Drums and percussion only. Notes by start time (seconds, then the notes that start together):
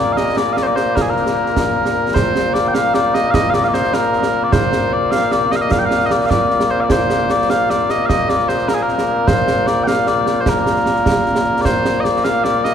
0.17 snare
0.37 snare
0.57 snare
0.77 snare
0.97 concert bass drum, snare
1.16 snare
1.26 snare
1.46 snare
1.56 concert bass drum, snare
1.86 snare
2.06 snare
2.16 concert bass drum, snare
2.36 snare
2.55 snare
2.75 snare
2.94 snare
3.15 snare
3.34 concert bass drum, snare
3.54 snare
3.64 snare
3.74 snare
3.84 snare
3.93 snare
4.13 snare
4.23 snare
4.53 concert bass drum, snare
4.73 snare
5.12 snare
5.32 snare
5.52 snare
5.71 concert bass drum, snare
5.91 snare
6.01 snare
6.11 snare
6.21 snare
6.31 concert bass drum, snare
6.51 snare
6.60 snare
6.90 concert bass drum, snare
7.10 snare
7.30 snare
7.50 snare
7.70 snare
7.89 snare
8.10 concert bass drum, snare
8.29 snare
8.39 snare
8.49 snare
8.59 snare
8.68 snare
8.89 snare
8.98 snare
9.28 concert bass drum, snare
9.48 snare
9.67 snare
9.87 snare
10.07 snare
10.27 snare
10.46 concert bass drum, snare
10.66 snare
10.76 snare
10.86 snare
10.96 snare
11.06 concert bass drum, snare
11.26 snare
11.36 snare
11.65 concert bass drum, snare
11.85 snare
12.05 snare
12.25 snare
12.45 snare
12.65 snare